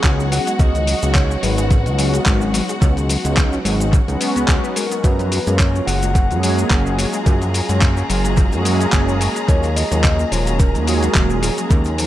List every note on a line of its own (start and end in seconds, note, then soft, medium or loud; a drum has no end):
0.00 0.39 C#2 loud
0.00 0.15 F#3 loud
0.00 0.16 G#3 medium
0.00 0.16 B3 loud
0.00 0.16 C#4 loud
0.00 5.05 F#4 medium
0.00 0.16 G#4 loud
0.00 5.05 F#5 medium
0.00 kick loud
0.00 clap loud
0.04 0.13 C#3 loud
0.04 closed hi-hat medium
0.04 cabasa medium
0.04 shaker soft
0.19 0.26 F#3 medium
0.19 0.26 G#3 medium
0.19 0.26 B3 medium
0.19 0.26 C#4 medium
0.19 0.27 C#4 medium
0.19 0.27 D#4 medium
0.19 cabasa soft
0.19 shaker soft
0.32 0.36 F#3 loud
0.32 0.58 F#5 loud
0.32 open hi-hat loud
0.32 shaker medium
0.47 0.52 G#3 medium
0.47 closed hi-hat medium
0.47 cabasa medium
0.47 shaker soft
0.59 0.95 C#2 loud
0.59 0.65 C#3 medium
0.59 0.68 F#3 medium
0.59 0.68 G#3 medium
0.59 0.68 B3 medium
0.59 0.68 C#4 medium
0.59 0.68 D#4 medium
0.59 1.12 D#5 loud
0.59 kick loud
0.59 closed hi-hat medium
0.59 cabasa medium
0.59 shaker soft
0.75 0.82 D#3 medium
0.75 closed hi-hat soft
0.75 cabasa soft
0.75 shaker soft
0.87 0.93 F#3 medium
0.87 open hi-hat loud
0.87 shaker medium
1.02 1.37 C#2 medium
1.02 1.13 F#3 medium
1.02 1.14 G#3 medium
1.02 1.10 G#3 medium
1.02 1.14 B3 medium
1.02 1.14 C#4 medium
1.02 1.14 D#4 loud
1.02 closed hi-hat medium
1.02 cabasa medium
1.02 shaker soft
1.15 1.24 C#3 loud
1.15 1.45 C#5 loud
1.15 kick loud
1.15 clap loud
1.15 closed hi-hat medium
1.15 cabasa medium
1.15 shaker soft
1.30 1.37 C#4 medium
1.30 cabasa soft
1.30 shaker soft
1.42 1.87 G#1 medium
1.42 1.51 F#3 medium
1.42 1.46 F#3 loud
1.42 1.51 G#3 medium
1.42 1.51 B3 medium
1.42 1.51 C#4 medium
1.42 1.52 D#4 medium
1.42 1.99 B4 medium
1.42 open hi-hat loud
1.42 shaker medium
1.58 1.63 G#3 medium
1.58 closed hi-hat medium
1.58 cabasa medium
1.58 shaker soft
1.71 1.77 C#3 medium
1.71 kick loud
1.71 closed hi-hat medium
1.71 cabasa medium
1.71 shaker soft
1.85 2.20 C#2 loud
1.85 1.93 D#3 medium
1.85 2.37 F#3 loud
1.85 2.38 G#3 medium
1.85 2.38 B3 medium
1.85 2.38 C#4 medium
1.85 2.38 F#4 loud
1.85 closed hi-hat soft
1.85 cabasa soft
1.85 shaker soft
1.98 2.04 F#3 medium
1.98 open hi-hat loud
1.98 shaker medium
2.14 2.21 G#3 medium
2.14 closed hi-hat medium
2.14 cabasa medium
2.14 shaker soft
2.26 2.62 G#1 loud
2.26 2.35 C#3 loud
2.26 kick loud
2.26 clap loud
2.26 closed hi-hat medium
2.26 cabasa medium
2.26 shaker soft
2.41 2.48 F#3 medium
2.41 2.48 G#3 medium
2.41 2.48 B3 medium
2.41 2.49 C#4 medium
2.41 2.48 C#4 medium
2.41 2.49 D#4 medium
2.41 cabasa soft
2.41 shaker soft
2.54 2.58 F#3 loud
2.54 open hi-hat loud
2.54 shaker medium
2.69 2.74 G#3 medium
2.69 closed hi-hat soft
2.69 cabasa medium
2.69 shaker soft
2.81 3.17 C#2 loud
2.81 2.88 C#3 medium
2.81 2.90 F#3 medium
2.81 2.90 G#3 medium
2.81 2.90 B3 medium
2.81 2.90 C#4 medium
2.81 2.90 D#4 medium
2.81 kick loud
2.81 closed hi-hat medium
2.81 cabasa medium
2.81 shaker soft
2.97 3.04 D#3 medium
2.97 closed hi-hat soft
2.97 cabasa soft
2.97 shaker soft
3.09 3.15 F#3 medium
3.09 open hi-hat loud
3.09 shaker medium
3.24 3.59 C#2 medium
3.24 3.36 F#3 medium
3.24 3.36 G#3 medium
3.24 3.32 G#3 medium
3.24 3.36 B3 medium
3.24 3.36 C#4 medium
3.24 3.36 D#4 loud
3.24 closed hi-hat medium
3.24 cabasa medium
3.24 shaker soft
3.37 3.46 C#3 loud
3.37 kick loud
3.37 clap loud
3.37 closed hi-hat medium
3.37 cabasa medium
3.37 shaker soft
3.53 3.60 C#4 medium
3.53 cabasa soft
3.53 shaker soft
3.65 4.00 G#1 loud
3.65 3.73 F#3 medium
3.65 3.69 F#3 loud
3.65 3.73 G#3 medium
3.65 3.74 B3 medium
3.65 3.74 C#4 medium
3.65 3.74 D#4 medium
3.65 open hi-hat loud
3.65 shaker medium
3.80 3.85 G#3 medium
3.80 closed hi-hat medium
3.80 cabasa medium
3.80 shaker soft
3.93 3.99 C#3 medium
3.93 kick loud
3.93 closed hi-hat medium
3.93 cabasa medium
3.93 shaker soft
4.08 4.17 C#2 medium
4.08 4.16 D#3 medium
4.08 4.60 F#3 loud
4.08 4.60 G#3 medium
4.08 4.60 B3 loud
4.08 4.60 C#4 medium
4.08 4.60 F#4 loud
4.08 closed hi-hat soft
4.08 cabasa soft
4.08 shaker soft
4.21 4.27 B3 loud
4.21 open hi-hat loud
4.21 shaker medium
4.36 4.46 C#2 soft
4.36 4.41 B3 loud
4.36 closed hi-hat medium
4.36 cabasa medium
4.36 shaker soft
4.48 4.59 C#2 medium
4.48 4.54 G#3 loud
4.48 kick loud
4.48 clap loud
4.48 closed hi-hat medium
4.48 cabasa medium
4.48 shaker soft
4.63 4.70 F#3 medium
4.63 4.71 G#3 medium
4.63 4.68 B3 loud
4.63 4.71 B3 medium
4.63 4.71 C#4 medium
4.63 4.71 D#4 medium
4.63 cabasa soft
4.63 shaker soft
4.76 4.80 G#3 loud
4.76 5.05 A#4 medium
4.76 open hi-hat loud
4.76 shaker medium
4.91 4.99 B3 medium
4.91 closed hi-hat medium
4.91 cabasa medium
4.91 shaker soft
5.04 5.39 F#2 loud
5.04 5.10 C#3 medium
5.04 5.12 F#3 medium
5.04 5.12 G#3 medium
5.04 5.12 A#3 medium
5.04 5.13 C#4 medium
5.04 5.13 F4 medium
5.04 12.07 G#4 medium
5.04 5.61 B4 loud
5.04 12.07 A#5 medium
5.04 kick loud
5.04 closed hi-hat medium
5.04 cabasa medium
5.04 shaker soft
5.19 5.26 F3 medium
5.19 closed hi-hat soft
5.19 cabasa soft
5.19 shaker soft
5.32 5.38 F#3 medium
5.32 open hi-hat loud
5.32 shaker medium
5.46 5.81 F#2 medium
5.46 5.58 F#3 medium
5.46 5.58 G#3 medium
5.46 5.54 G#3 medium
5.46 5.58 A#3 medium
5.46 5.58 C#4 medium
5.46 5.58 F4 medium
5.46 closed hi-hat medium
5.46 cabasa medium
5.46 shaker soft
5.59 5.68 C#3 loud
5.59 5.86 C#5 loud
5.59 kick loud
5.59 clap loud
5.59 closed hi-hat medium
5.59 cabasa medium
5.59 shaker soft
5.75 5.82 C#4 medium
5.75 cabasa soft
5.75 shaker soft
5.87 6.32 F#1 medium
5.87 5.96 F#3 medium
5.87 5.91 F#3 loud
5.87 5.96 G#3 medium
5.87 5.96 A#3 medium
5.87 5.96 C#4 medium
5.87 5.96 F4 medium
5.87 6.94 F#5 loud
5.87 open hi-hat loud
5.87 shaker medium
6.02 6.07 G#3 medium
6.02 closed hi-hat medium
6.02 cabasa medium
6.02 shaker soft
6.15 6.21 C#3 medium
6.15 kick loud
6.15 closed hi-hat medium
6.15 cabasa medium
6.15 shaker soft
6.30 6.64 F#2 loud
6.30 6.38 F3 medium
6.30 6.82 F#3 loud
6.30 6.82 G#3 medium
6.30 6.82 A#3 loud
6.30 6.82 C#4 medium
6.30 6.83 G#4 loud
6.30 closed hi-hat soft
6.30 cabasa soft
6.30 shaker soft
6.43 6.49 F#3 medium
6.43 open hi-hat loud
6.43 shaker medium
6.58 6.65 G#3 medium
6.58 closed hi-hat medium
6.58 cabasa medium
6.58 shaker soft
6.71 7.06 F#1 loud
6.71 6.79 C#3 loud
6.71 kick loud
6.71 clap loud
6.71 closed hi-hat medium
6.71 cabasa medium
6.71 shaker soft
6.86 6.93 F#3 medium
6.86 6.93 G#3 medium
6.86 6.93 A#3 medium
6.86 6.93 C#4 medium
6.86 6.93 F4 medium
6.86 cabasa soft
6.86 shaker soft
6.99 7.02 F#3 loud
6.99 open hi-hat loud
6.99 shaker medium
7.13 7.19 G#3 medium
7.13 closed hi-hat soft
7.13 cabasa medium
7.13 shaker soft
7.26 7.62 F#2 medium
7.26 7.32 C#3 medium
7.26 7.35 F#3 medium
7.26 7.35 G#3 medium
7.26 7.35 A#3 medium
7.26 7.35 C#4 medium
7.26 7.35 F4 medium
7.26 kick loud
7.26 closed hi-hat medium
7.26 cabasa medium
7.26 shaker soft
7.42 7.49 F3 medium
7.42 closed hi-hat soft
7.42 cabasa soft
7.42 shaker soft
7.54 7.60 F#3 medium
7.54 open hi-hat loud
7.54 shaker medium
7.69 8.03 F#2 medium
7.69 7.80 F#3 medium
7.69 7.80 G#3 medium
7.69 7.76 G#3 medium
7.69 7.80 A#3 medium
7.69 7.81 C#4 medium
7.69 7.81 F4 loud
7.69 closed hi-hat medium
7.69 cabasa medium
7.69 shaker soft
7.81 7.90 C#3 loud
7.81 kick loud
7.81 clap loud
7.81 closed hi-hat medium
7.81 cabasa medium
7.81 shaker soft
7.97 8.04 C#4 medium
7.97 cabasa soft
7.97 shaker soft
8.09 8.54 F#1 loud
8.09 8.18 F#3 medium
8.09 8.13 F#3 loud
8.09 8.18 G#3 medium
8.09 8.18 A#3 medium
8.09 8.18 C#4 medium
8.09 8.18 F4 medium
8.09 open hi-hat loud
8.09 shaker medium
8.25 8.30 G#3 medium
8.25 closed hi-hat medium
8.25 cabasa medium
8.25 shaker soft
8.37 8.43 C#3 medium
8.37 kick loud
8.37 closed hi-hat medium
8.37 cabasa medium
8.37 shaker soft
8.52 8.87 F#2 loud
8.52 8.60 F3 medium
8.52 9.04 F#3 loud
8.52 9.04 G#3 loud
8.52 9.05 A#3 medium
8.52 9.05 C#4 medium
8.52 9.05 G#4 loud
8.52 closed hi-hat soft
8.52 cabasa soft
8.52 shaker soft
8.65 8.71 F#3 medium
8.65 open hi-hat loud
8.65 shaker medium
8.80 8.88 G#3 medium
8.80 closed hi-hat medium
8.80 cabasa medium
8.80 shaker soft
8.92 9.28 F#1 loud
8.92 9.02 C#3 loud
8.92 kick loud
8.92 clap loud
8.92 closed hi-hat medium
8.92 cabasa medium
8.92 shaker soft
9.08 9.15 F#3 medium
9.08 9.15 G#3 medium
9.08 9.15 A#3 medium
9.08 9.15 C#4 medium
9.08 9.16 C#4 medium
9.08 9.15 F4 medium
9.08 cabasa soft
9.08 shaker soft
9.21 9.24 F#3 loud
9.21 open hi-hat loud
9.21 shaker medium
9.36 9.41 G#3 medium
9.36 closed hi-hat medium
9.36 cabasa medium
9.36 shaker soft
9.48 9.84 D#2 loud
9.48 9.54 C#3 medium
9.48 9.57 F#3 medium
9.48 9.57 G#3 medium
9.48 9.57 A#3 medium
9.48 9.57 C#4 medium
9.48 9.57 F4 medium
9.48 9.78 C#5 loud
9.48 kick loud
9.48 closed hi-hat medium
9.48 cabasa medium
9.48 shaker soft
9.63 9.71 D#3 medium
9.63 closed hi-hat soft
9.63 cabasa soft
9.63 shaker soft
9.76 9.82 F3 medium
9.76 10.33 D#5 loud
9.76 open hi-hat loud
9.76 shaker medium
9.91 10.26 D#2 medium
9.91 10.02 F#3 medium
9.91 9.99 F#3 medium
9.91 10.03 G#3 medium
9.91 10.03 A#3 medium
9.91 10.03 C#4 medium
9.91 10.03 F4 medium
9.91 closed hi-hat medium
9.91 cabasa medium
9.91 shaker soft
10.04 10.13 C#3 loud
10.04 kick loud
10.04 clap loud
10.04 closed hi-hat medium
10.04 cabasa medium
10.04 shaker soft
10.19 10.26 A#3 medium
10.19 cabasa soft
10.19 shaker soft
10.31 10.76 D#1 loud
10.31 10.35 F3 loud
10.31 10.40 F#3 medium
10.31 10.40 G#3 medium
10.31 10.40 A#3 medium
10.31 10.40 C#4 medium
10.31 10.40 F4 medium
10.31 10.61 C#5 loud
10.31 open hi-hat loud
10.31 shaker medium
10.47 10.52 F#3 medium
10.47 closed hi-hat medium
10.47 cabasa medium
10.47 shaker soft
10.59 10.65 C#3 medium
10.59 10.89 A#4 loud
10.59 kick loud
10.59 closed hi-hat medium
10.59 cabasa medium
10.59 shaker soft
10.74 11.09 D#2 loud
10.74 10.82 D#3 medium
10.74 11.26 F#3 loud
10.74 11.26 G#3 loud
10.74 11.27 A#3 loud
10.74 11.27 C#4 medium
10.74 11.27 G#4 loud
10.74 closed hi-hat soft
10.74 cabasa soft
10.74 shaker soft
10.87 10.93 F3 medium
10.87 11.43 F#4 medium
10.87 open hi-hat loud
10.87 shaker medium
11.02 11.10 F#3 medium
11.02 closed hi-hat medium
11.02 cabasa medium
11.02 shaker soft
11.15 11.50 D#1 loud
11.15 11.24 C#3 loud
11.15 kick loud
11.15 clap loud
11.15 closed hi-hat medium
11.15 cabasa medium
11.15 shaker soft
11.30 11.37 F#3 medium
11.30 11.37 G#3 medium
11.30 11.37 A#3 medium
11.30 11.37 C#4 medium
11.30 11.37 F4 medium
11.30 cabasa soft
11.30 shaker soft
11.42 11.46 F3 loud
11.42 open hi-hat loud
11.42 shaker medium
11.58 11.63 F#3 medium
11.58 closed hi-hat medium
11.58 cabasa medium
11.58 shaker soft
11.70 12.06 D#2 loud
11.70 11.76 C#3 medium
11.70 11.79 F#3 medium
11.70 11.79 G#3 medium
11.70 11.79 A#3 medium
11.70 11.79 C#4 medium
11.70 11.79 F4 medium
11.70 kick loud
11.70 closed hi-hat medium
11.70 cabasa medium
11.70 shaker soft
11.84 11.93 D#3 medium
11.84 closed hi-hat soft
11.84 cabasa soft
11.84 shaker soft
11.98 12.04 F3 medium
11.98 open hi-hat loud
11.98 shaker medium